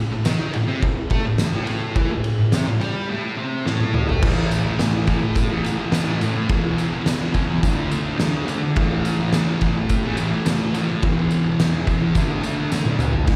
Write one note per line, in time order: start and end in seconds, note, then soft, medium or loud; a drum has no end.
0.12 0.25 A2 medium
0.25 0.53 D#3 loud
0.25 0.54 D#4 loud
0.25 snare loud
0.25 ride loud
0.25 tambourine medium
0.53 0.67 A2 medium
0.53 ride medium
0.67 0.81 C3 loud
0.67 0.82 C4 loud
0.82 1.05 A2 medium
0.82 kick loud
0.82 ride loud
1.10 1.25 A3 medium
1.10 1.25 A4 loud
1.10 kick medium
1.10 ride medium
1.26 1.39 A2 medium
1.38 1.51 A2 medium
1.38 snare loud
1.38 ride loud
1.38 tambourine loud
1.53 1.95 A2 medium
1.53 1.96 A3 loud
1.67 ride medium
1.96 2.10 E3 medium
1.96 2.10 E4 loud
1.96 kick loud
1.96 ride loud
2.12 2.34 A2 medium
2.24 ride medium
2.39 2.53 A2 medium
2.52 2.66 C3 loud
2.52 2.67 C4 loud
2.52 snare loud
2.52 ride loud
2.52 tambourine medium
2.68 2.82 A2 medium
2.80 3.08 G3 medium
2.80 3.09 G4 loud
2.80 ride medium
3.10 3.37 A2 loud
3.10 3.38 A3 loud
3.37 3.65 C3 medium
3.37 3.66 C4 loud
3.66 4.08 A2 loud
3.66 4.07 A3 loud
3.66 snare medium
3.80 high tom medium
3.94 mid tom loud
4.08 4.22 A3 loud
4.08 4.22 A4 loud
4.08 floor tom loud
4.22 4.78 A2 medium
4.22 4.67 E3 loud
4.22 4.63 A3 loud
4.22 kick loud
4.22 crash loud
4.51 ride medium
4.51 tambourine medium
4.65 4.79 E3 medium
4.65 4.81 A3 medium
4.79 5.05 A2 medium
4.79 5.07 E3 loud
4.79 5.08 A3 loud
4.79 snare loud
4.79 ride loud
4.79 tambourine medium
5.06 5.50 A2 medium
5.06 5.21 E3 medium
5.06 5.20 A3 medium
5.06 kick medium
5.06 ride medium
5.06 tambourine soft
5.21 muted distorted electric guitar stroke medium
5.35 kick loud
5.35 ride loud
5.35 tambourine medium
5.49 5.64 E3 medium
5.49 5.65 A3 medium
5.63 5.90 A2 medium
5.63 5.79 E3 medium
5.63 5.76 A3 medium
5.63 ride medium
5.63 tambourine medium
5.78 5.92 E3 medium
5.78 5.93 A3 medium
5.91 6.19 A2 loud
5.91 6.20 E3 loud
5.91 6.22 A3 loud
5.91 snare loud
5.91 ride loud
5.91 tambourine medium
6.20 6.48 A2 medium
6.20 6.34 E3 medium
6.20 6.34 A3 medium
6.20 ride medium
6.20 tambourine medium
6.35 muted distorted electric guitar stroke medium
6.49 7.03 E2 medium
6.49 6.93 B2 loud
6.49 6.90 E3 loud
6.49 kick loud
6.49 ride loud
6.78 ride medium
6.78 tambourine medium
6.91 7.05 B2 medium
6.91 7.07 E3 medium
7.05 7.32 E2 medium
7.05 7.34 B2 loud
7.05 7.35 E3 loud
7.05 snare loud
7.05 ride loud
7.05 tambourine medium
7.33 7.61 E2 medium
7.33 7.48 B2 medium
7.33 7.47 E3 medium
7.33 kick medium
7.33 ride medium
7.33 tambourine soft
7.48 muted distorted electric guitar stroke medium
7.61 7.88 D3 loud
7.61 7.76 A3 medium
7.61 7.73 D4 loud
7.61 kick loud
7.61 ride loud
7.61 tambourine medium
7.74 7.90 A3 medium
7.74 7.91 D4 medium
7.89 8.16 D3 medium
7.89 8.05 A3 medium
7.89 8.02 D4 medium
7.89 ride medium
7.89 tambourine medium
8.03 8.18 A3 medium
8.03 8.19 D4 medium
8.17 8.45 D3 loud
8.17 8.47 A3 loud
8.17 8.49 D4 loud
8.17 snare loud
8.17 ride loud
8.17 tambourine loud
8.46 8.74 D3 medium
8.46 8.62 A3 medium
8.46 8.61 D4 medium
8.46 ride medium
8.46 tambourine medium
8.63 muted distorted electric guitar stroke medium
8.76 9.33 A2 medium
8.76 9.22 E3 medium
8.76 9.18 A3 loud
8.76 kick loud
8.76 ride loud
9.05 ride medium
9.05 tambourine medium
9.19 9.34 E3 medium
9.19 9.36 A3 medium
9.32 9.61 A2 medium
9.32 9.63 E3 medium
9.32 snare loud
9.32 ride loud
9.32 tambourine loud
9.37 9.64 A3 loud
9.61 10.04 A2 medium
9.61 9.77 E3 medium
9.61 kick medium
9.61 ride medium
9.61 tambourine soft
9.65 9.76 A3 medium
9.77 muted distorted electric guitar stroke medium
9.89 kick loud
9.89 ride loud
9.89 tambourine medium
10.04 10.18 E3 medium
10.04 10.20 A3 medium
10.17 10.45 A2 medium
10.17 10.33 E3 medium
10.17 ride medium
10.17 tambourine medium
10.21 10.30 A3 medium
10.31 10.47 E3 medium
10.31 10.48 A3 medium
10.46 10.74 A2 loud
10.46 10.75 E3 loud
10.46 10.77 A3 loud
10.46 snare loud
10.46 ride loud
10.46 tambourine loud
10.74 11.01 A2 medium
10.74 10.89 E3 medium
10.74 10.88 A3 medium
10.74 ride medium
10.74 tambourine medium
10.90 muted distorted electric guitar stroke medium
11.02 11.58 E2 medium
11.02 11.47 B2 loud
11.02 11.44 E3 medium
11.02 kick loud
11.02 ride loud
11.31 ride medium
11.31 tambourine medium
11.45 11.60 B2 medium
11.45 11.61 E3 medium
11.59 11.87 E2 medium
11.59 11.88 B2 loud
11.59 11.90 E3 loud
11.59 snare loud
11.59 ride loud
11.59 tambourine medium
11.87 12.14 E2 medium
11.87 12.01 B2 medium
11.87 12.00 E3 medium
11.87 kick medium
11.87 ride medium
11.87 tambourine soft
12.02 muted distorted electric guitar stroke medium
12.15 12.41 D3 medium
12.15 12.30 A3 medium
12.15 12.27 D4 loud
12.15 kick loud
12.15 ride loud
12.15 tambourine medium
12.28 12.43 A3 medium
12.28 12.45 D4 medium
12.42 12.69 D3 medium
12.42 12.58 A3 medium
12.42 12.55 D4 medium
12.42 ride medium
12.42 tambourine medium
12.56 12.71 A3 medium
12.56 12.72 D4 medium
12.71 12.97 D3 loud
12.71 12.99 A3 loud
12.71 13.00 D4 loud
12.71 snare medium
12.71 tambourine medium
12.85 high tom medium
12.98 13.26 D3 medium
12.98 13.12 A3 medium
12.98 13.12 D4 medium
12.98 mid tom medium
12.98 tambourine medium
13.13 muted distorted electric guitar stroke medium
13.13 floor tom medium
13.26 13.36 A2 loud
13.26 13.36 E3 loud
13.26 13.36 A3 loud
13.26 kick loud
13.26 crash loud